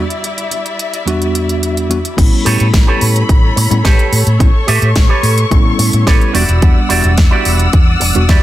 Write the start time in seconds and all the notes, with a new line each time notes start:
Already playing: G3 E4 D5 E5
0.10 closed hi-hat
0.24 closed hi-hat
0.38 closed hi-hat
0.51 closed hi-hat
0.66 closed hi-hat
0.79 closed hi-hat
0.94 closed hi-hat
1.06 E2 G3 B3 D4 F#4, closed hi-hat
1.22 closed hi-hat
1.35 closed hi-hat
1.49 closed hi-hat
1.63 closed hi-hat
1.77 closed hi-hat
1.89 E2 G3 B3 D4 F#4, closed hi-hat
2.05 closed hi-hat
2.17 A1 G3 B3 C#4 E4 A4 C#5 B5, kick, closed hi-hat, crash
2.45 A2 G4 A4 B4 C#5, open hi-hat
2.60 A2, closed hi-hat
2.73 A1, kick, snare, closed hi-hat
2.87 G4 A4 B4 C#5
3.01 A2, open hi-hat
3.16 closed hi-hat
3.29 A1, kick, closed hi-hat
3.56 A2, muted clean electric guitar stroke, open hi-hat
3.70 A2 G3 B3 C#4 E4, muted clean electric guitar stroke, closed hi-hat
3.84 A1 G4 A4 B4 C#5, kick, snare, closed hi-hat
3.99 closed hi-hat
4.12 A2, open hi-hat
4.26 A2, closed hi-hat
4.39 A1 G3 B3 C#4 E4 C#6, kick, closed hi-hat
4.67 A2 G4 A4 B4 E5, open hi-hat
4.82 A2, closed hi-hat
4.96 A1, kick, snare, closed hi-hat
5.09 G4 A4 B4 C#5
5.23 A2, open hi-hat
5.38 closed hi-hat
5.50 A1 G3 B3 C#4 E4, kick, closed hi-hat
5.79 A2, muted clean electric guitar stroke, open hi-hat
5.93 A2, muted clean electric guitar stroke, closed hi-hat
6.06 A1 G4 A4 B4 C#5, kick, snare, closed hi-hat
6.21 closed hi-hat
6.34 E1 G3 B3 D4 E4 F#4 G4 D5 F#5 E6, open hi-hat
6.49 E1, closed hi-hat
6.62 E2 G3 B3 D4 F#5, kick, closed hi-hat
6.89 E1 E4 F#4 G4 D5, open hi-hat
7.04 E1, closed hi-hat
7.18 E2, kick, snare, closed hi-hat
7.31 E4 F#4 G4 D5
7.45 E1, open hi-hat
7.59 closed hi-hat
7.73 E2, kick, closed hi-hat
8.00 E1, muted clean electric guitar stroke, open hi-hat
8.15 E1 G3 B3 D4 F#4, muted clean electric guitar stroke, closed hi-hat
8.28 E2 E4 F#4 G4 D5, kick, snare, closed hi-hat